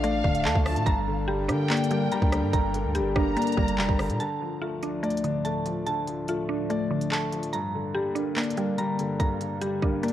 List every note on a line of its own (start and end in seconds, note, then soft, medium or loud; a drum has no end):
0.00 0.22 A1 loud
0.00 0.24 D3 medium
0.00 0.66 F3 medium
0.00 0.45 A3 medium
0.00 0.87 A3 medium
0.00 0.24 D4 medium
0.00 0.83 D4 medium
0.00 0.87 D4 medium
0.00 0.87 F4 medium
0.00 0.83 A4 medium
0.00 0.03 D5 loud
0.00 0.86 D5 loud
0.00 0.62 F5 loud
0.00 0.83 F5 medium
0.00 0.44 A5 loud
0.00 closed hi-hat medium
0.24 0.46 D1 loud
0.24 0.87 D3 medium
0.24 0.87 D4 medium
0.24 kick loud
0.35 closed hi-hat medium
0.45 0.55 D2 loud
0.45 0.86 A3 loud
0.45 0.87 A5 loud
0.45 clap loud
0.55 0.78 D2 loud
0.55 kick loud
0.66 0.87 F3 medium
0.66 0.85 A5 medium
0.66 cross-stick loud
0.66 open hi-hat medium
0.76 0.86 A2 loud
0.76 closed hi-hat medium
0.86 1.51 G1 loud
0.86 1.91 G2 medium
0.86 4.17 D4 medium
0.86 4.17 A#4 medium
0.86 4.17 G5 medium
0.86 2.11 A#5 loud
0.86 kick loud
0.86 closed hi-hat medium
1.07 2.12 D3 medium
1.28 2.10 G3 medium
1.28 2.53 G4 loud
1.49 2.09 D3 loud
1.49 1.89 A#3 medium
1.49 2.74 D4 medium
1.49 2.49 G5 medium
1.49 cross-stick medium
1.49 closed hi-hat medium
1.70 2.95 A#3 loud
1.70 2.74 D4 loud
1.70 clap loud
1.70 closed hi-hat soft
1.77 closed hi-hat medium
1.84 closed hi-hat medium
1.90 3.16 G3 medium
1.90 2.95 A#3 medium
1.90 closed hi-hat medium
2.12 2.93 G3 loud
2.12 2.52 A#5 loud
2.12 closed hi-hat medium
2.22 2.44 D2 loud
2.22 kick loud
2.32 2.72 D3 medium
2.32 cross-stick loud
2.32 closed hi-hat medium
2.43 2.53 G2 loud
2.53 2.86 G1 loud
2.53 3.57 G2 medium
2.53 3.77 A#5 loud
2.53 kick loud
2.53 closed hi-hat medium
2.74 3.78 D3 medium
2.74 closed hi-hat medium
2.85 3.02 D2 loud
2.95 3.76 G3 medium
2.95 4.20 G4 loud
2.95 closed hi-hat medium
3.00 3.15 G1 loud
3.16 3.36 G1 loud
3.16 3.56 A#3 medium
3.16 4.20 D4 medium
3.16 4.16 A#5 loud
3.16 kick loud
3.16 cross-stick medium
3.37 4.20 A#3 medium
3.37 4.20 D4 loud
3.37 closed hi-hat medium
3.42 closed hi-hat medium
3.47 closed hi-hat medium
3.52 closed hi-hat medium
3.57 3.80 G1 loud
3.57 4.20 G3 medium
3.57 4.20 A#3 medium
3.57 kick loud
3.68 closed hi-hat medium
3.78 3.88 F1 loud
3.78 4.20 G3 loud
3.78 4.20 A#5 loud
3.78 clap loud
3.89 4.11 G1 loud
3.89 kick loud
3.99 4.18 D3 medium
3.99 cross-stick loud
3.99 open hi-hat medium
4.09 4.19 A#2 loud
4.09 closed hi-hat medium
4.20 7.50 D2 medium
4.20 7.50 A2 medium
4.20 5.24 D3 medium
4.20 7.50 F3 medium
4.20 5.44 A5 loud
4.20 closed hi-hat medium
4.40 5.45 F3 medium
4.61 5.43 A3 medium
4.61 5.86 F4 medium
4.82 5.22 D4 medium
4.82 6.08 D4 medium
4.82 closed hi-hat medium
5.03 6.28 A3 medium
5.03 6.07 D5 medium
5.03 closed hi-hat soft
5.10 closed hi-hat medium
5.17 closed hi-hat medium
5.24 6.49 D3 medium
5.24 6.28 D4 medium
5.24 closed hi-hat medium
5.45 6.27 A3 medium
5.45 5.85 A5 medium
5.45 closed hi-hat medium
5.66 6.06 F3 medium
5.66 closed hi-hat medium
5.87 6.91 D3 medium
5.87 7.11 A5 loud
5.87 closed hi-hat medium
6.07 7.12 F3 medium
6.07 closed hi-hat medium
6.28 7.10 A3 medium
6.28 7.54 F4 medium
6.28 closed hi-hat medium
6.49 7.53 D4 medium
6.49 6.89 D4 medium
6.70 7.53 A3 medium
6.70 7.53 D5 loud
6.70 closed hi-hat medium
6.91 7.53 D3 medium
6.91 7.53 D4 medium
7.01 closed hi-hat medium
7.11 7.53 A3 medium
7.11 7.54 A5 medium
7.11 clap loud
7.32 7.53 F3 medium
7.32 closed hi-hat medium
7.43 closed hi-hat medium
7.53 10.13 G2 medium
7.53 8.58 G2 medium
7.53 10.13 D3 medium
7.53 10.13 A#3 medium
7.53 8.77 A#5 loud
7.53 closed hi-hat medium
7.74 8.78 D3 medium
7.95 8.77 G3 medium
7.95 9.20 G4 medium
8.15 8.55 A#3 medium
8.15 9.41 D4 medium
8.15 closed hi-hat medium
8.37 9.62 A#3 medium
8.37 9.41 D4 medium
8.37 clap loud
8.37 closed hi-hat soft
8.44 closed hi-hat medium
8.51 closed hi-hat medium
8.57 9.83 G3 medium
8.57 9.61 A#3 medium
8.57 closed hi-hat medium
8.78 9.60 G3 medium
8.78 9.19 A#5 loud
8.78 closed hi-hat medium
8.99 9.39 D3 medium
8.99 closed hi-hat medium
9.20 10.13 G2 medium
9.20 10.13 A#5 loud
9.20 kick loud
9.20 closed hi-hat medium
9.41 10.13 D3 medium
9.41 closed hi-hat medium
9.62 10.13 G3 medium
9.62 10.13 G4 medium
9.62 closed hi-hat medium
9.82 10.13 A#3 medium
9.82 10.13 D4 medium
9.82 kick medium
10.03 10.13 A#3 medium
10.03 10.13 D4 loud
10.03 closed hi-hat medium
10.08 closed hi-hat medium